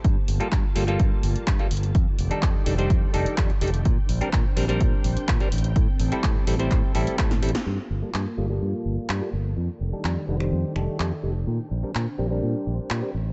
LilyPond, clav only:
\new Staff \with { instrumentName = "Clav" } { \time 4/4 \key g \minor \tempo 4 = 126 r8. <g bes f' a'>16 r8 <g bes f' a'>16 <g bes f' a'>4. <g bes f' a'>16 r8 | r8. <g d' ees' a'>8. <g d' ees' a'>16 <g d' ees' c''>8. <g d' ees' a'>8 <g d' ees' a'>16 r16 <g d' ees' a'>16 r16 | r8. <g c' d' bes'>16 r8 <g c' d' bes'>16 <g c' d' bes'>4. <g c' d' bes'>16 r8 | r8. <g c' e' a'>8. <g c' e' a'>16 <g c' e' c''>8. <g c' e' a'>8 <g c' e' a'>16 r16 <g c' e' a'>16 r16 |
r8. <g bes f' a'>16 r8 <g bes f' a'>16 <g bes f' a'>4. <g bes f' a'>16 r8 | r8. <g d' ees' a'>8. <g d' ees' a'>16 <g d' ees' c''>8. <g d' ees' a'>8 <g d' ees' a'>16 r16 <g d' ees' a'>16 r16 | r8. <g c' d' bes'>16 r8 <g c' d' bes'>16 <g c' d' bes'>4. <g c' d' bes'>16 r8 | }